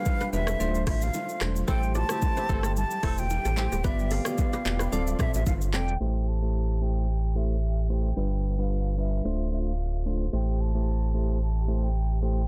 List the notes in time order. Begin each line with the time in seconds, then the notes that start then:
Already playing: F3 G3 B3 D4 F4 G4 B4 F5
0.06 kick, high bongo, shaker
0.21 D4 B4, shaker
0.33 E1 G3 D4 F4 B4 E5, low bongo, shaker
0.47 C4 A4, cross-stick, shaker
0.60 D1 D3 A3 C4 D4 F4 C5, low conga, shaker
0.75 shaker
0.87 A1 A3 D4 E4 F4 C5 E5, kick, cross-stick, open hi-hat, shaker
1.01 F5, low bongo, shaker
1.14 high bongo, shaker
1.29 shaker
1.41 E1 A3 C4 D4 F4 A4 C5, cross-stick, clap, high bongo, low conga, shaker
1.56 shaker
1.68 A1 C3 E3 A3 C4 E4 G4 A4 C5 G5, kick, low conga, shaker
1.83 shaker
1.95 F4 D5 A5, low bongo, shaker
2.09 E3 A3 C4 E4 G4 C5, cross-stick, low bongo, shaker
2.22 kick, high bongo, shaker
2.37 E3 C4 E4 G4 C5, shaker
2.49 G1 E3 A3 C4 E4 G4 A4 C5, kick, low bongo, shaker
2.63 C4 A4, cross-stick, shaker
2.76 A5, low conga, shaker
2.91 shaker
3.03 E1 E3 A3 C4 E4 G4 A4 C5, kick, cross-stick, open hi-hat, shaker
3.18 G5, low bongo, shaker
3.30 high bongo, shaker
3.45 A1 C4 A4, shaker
3.57 E3 A3 C4 E4 G4 C5, clap, high bongo, low conga, shaker
3.72 D1 B3 G4, shaker
3.84 G1 F3 B3 D4 F4 G4 B4 D5 E5, kick, low conga, shaker
3.99 high bongo, shaker
4.11 C4 A4 F5, open hi-hat, low bongo, shaker
4.25 B3 F4 G4 D5, cross-stick, low bongo, shaker
4.38 kick, high bongo, shaker
4.53 B3 G4, shaker
4.65 E1 B3 F4 G4 D5, clap, low bongo, shaker
4.79 D4 B4, cross-stick, shaker
4.92 D1 D3 C4 F4 A4 D5, low conga, shaker
5.07 shaker
5.19 B3 C4 F4 G4 A4 D5 E5, kick, cross-stick, mid tom, shaker
5.34 A1 E5, low bongo, shaker
5.46 G1 F5, kick, high bongo, shaker
5.61 shaker
5.73 E1 C4 F4 A4 D5 G5, clap, low conga, shaker
5.88 shaker
6.00 A1 C3 A3 E4 G4 C5
6.28 A5
6.42 A3 E4 G4 C5
6.81 A3 E4 G4 C5 G5
7.35 A3 E4 G4 C5 E5
7.89 A3 E4 G4 C5 G5
8.16 G1 F3 G3 B3 D4 F4 B4
8.58 G3 D4 F4 B4 F5
8.98 G3 D4 F4 B4 E5
9.25 D1 D3 A3 C4 D4 F4 C5
9.52 A3 D4 F4 C5 E5
9.68 F5
10.06 A3 D4 F4 C5
10.33 A1 C3 A3 E4 G4 C5 G5
10.61 A5
10.74 A3 E4 G4 C5
11.14 A3 E4 G4 C5
11.42 A5
11.68 A3 E4 G4 C5
11.76 A5
11.84 G5
12.22 A3 E4 G4 C5 G5